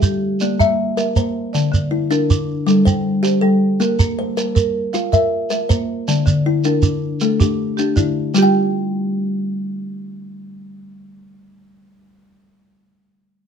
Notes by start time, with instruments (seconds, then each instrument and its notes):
Already playing: kalimba G4 A4, marimba E5
0.02 marimba G4, shekere
0.40 kalimba A#3, marimba D5, shekere
0.60 marimba A#3, kalimba E5, shekere
0.97 kalimba A#4, marimba E5, shekere
1.16 marimba A#3, kalimba C5, shekere
1.53 kalimba D3, marimba D5, shekere
1.72 marimba D3, shekere
1.91 kalimba E4
2.11 kalimba D4, marimba A#4, shekere
2.30 marimba D4, shekere
2.67 kalimba G3, marimba A4, shekere
2.85 marimba G3, kalimba C5, shekere
3.23 kalimba G4, marimba C5, shekere
3.41 marimba G3, kalimba A4
3.80 kalimba A#3, marimba A#4, shekere
3.99 marimba A#3, shekere
4.19 kalimba C5
4.37 kalimba A#4, shekere
4.55 marimba A#4, shekere
4.93 kalimba F4, marimba F5, shekere
5.12 marimba A#4, kalimba E5, shekere
5.50 kalimba A#4, marimba E5, shekere
5.69 marimba A#3, kalimba C5, shekere
6.08 kalimba D3, marimba D5, shekere
6.26 marimba D3, shekere
6.46 kalimba E4
6.64 kalimba D4, marimba A#4, shekere
6.82 marimba D4, shekere
7.21 kalimba A3, marimba A4, shekere
7.40 marimba D4, kalimba G4, shekere
7.77 kalimba D4, marimba G4, shekere
7.96 marimba D3, kalimba E4, shekere
8.34 kalimba G3 G4, marimba G3 F4, shekere
8.38 marimba G4 G5
8.42 kalimba G5